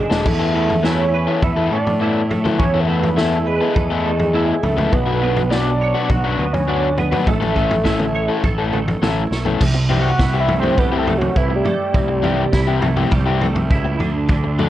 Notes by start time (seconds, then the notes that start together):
Already playing: D3 D4 F#4 G#4 A4 D#5
0.10 E1 F#3 A3 D4 A4, snare
0.26 E2 E3 A4 E5, kick, floor tom, crash
0.39 E3 B3 E4 A4
0.54 E3 A3 B3 E4 A4
0.70 floor tom
0.83 E3 B3 E4 A4 C#5 G#5, snare
1.14 B4
1.27 E3 B3 E4 A4
1.42 E2 A4 E5 B5, muted overdriven electric guitar stroke, kick, floor tom
1.56 E3 B3 E4 A4
1.71 A2 A3 D5 A5
1.87 floor tom
2.00 E3 B3 E4 A4
2.31 A3, floor tom
2.44 E3 B3 E4 A4, floor tom, mid tom
2.58 E2 E3 C#5 G#5, kick, floor tom
2.74 E3 B3 E4 A4
2.80 A4 E5
2.87 E3 A3 B3 E4 A4 B4 F#5
3.03 floor tom
3.16 E3 B3 E4 A4 E5, snare
3.46 G#4 B4 D#5
3.61 E3 B3 E4 A4
3.75 E2 A4, muted overdriven electric guitar stroke, kick, floor tom
3.90 E3 B3 E4 A4
4.05 A3
4.19 floor tom
4.34 E3 B3 E4 A4
4.62 C#2 A3 A4 E5, floor tom
4.77 E3 B3 E4 A4, floor tom, mid tom
4.92 B1 B2 B4 F#5, kick, floor tom
5.06 F#3 B3 D4 F#4
5.21 F#3 B3 D4 F#4
5.36 floor tom
5.50 F#3 B3 D4 F#4 D5 A5, snare
5.81 C#5
5.95 F#3 B3 D4 F#4
6.10 B1 F#4 F#5 C#6, muted overdriven electric guitar stroke, kick, floor tom
6.24 F#3 B3 D4 F#4
6.38 D2 B3
6.53 C#5 G#5, floor tom
6.68 F#3 B3 D4 F#4
6.98 B3 B4 F#5, floor tom
7.12 F#3 B3 D4 F#4, floor tom, mid tom
7.27 A1 A3 A4 E5, kick, floor tom
7.41 E3 A3 C#4 A4, floor tom
7.55 E3 A3 C#4 A4, kick
7.71 floor tom
7.84 E3 A3 C#4 E4 A4, kick, snare
8.00 mid tom
8.15 C#5
8.29 E3 A3 C#4 A4
8.43 A1 A4, muted overdriven electric guitar stroke, kick, floor tom
8.58 E3 A3 C#4 A4
8.73 A3, mid tom
8.88 floor tom
9.02 A1 E3 A3 C#4 E4 A4, snare, mid tom
9.31 B1 A3, snare
9.45 E3 A3 C#4 A4, floor tom
9.61 C2 C3, kick, floor tom, crash
9.74 muted overdriven electric guitar stroke
9.89 E3 G3 C4 E4 G4, floor tom
10.01 F#5 C#6
10.19 C2 E4, muted overdriven electric guitar stroke, kick, snare
10.33 E3 C4 E4 G4
10.40 E5 B5
10.48 A3, floor tom
10.59 E3 C4 E4 G4 C5 G5, floor tom
10.77 C2 G3 B4 F#5, muted overdriven electric guitar stroke, kick, floor tom
10.92 E3 C4 E4 G4
10.98 A4 E5
11.07 A3, floor tom
11.18 F#4 C#5, floor tom
11.36 C2 E4 B4, kick
11.51 muted overdriven electric guitar stroke
11.56 G4 D5
11.65 A3, floor tom
11.94 C2 C3, kick, floor tom
12.09 muted overdriven electric guitar stroke
12.23 E3 G3 C4 E4 G4, floor tom
12.53 C2 E4, muted overdriven electric guitar stroke, kick, snare
12.67 E3 C4 E4 G4
12.82 A3, floor tom
12.97 E3 C4 E4 G4, floor tom
13.11 C2 G3, muted overdriven electric guitar stroke, kick, floor tom
13.26 E3 C4 E4 G4
13.41 A3, floor tom
13.55 floor tom
13.70 C#2 E4, kick
13.85 muted overdriven electric guitar stroke
13.99 D2 D3, floor tom
14.29 D3, kick, floor tom
14.44 muted overdriven electric guitar stroke
14.59 F#3 A3 D4 A4, floor tom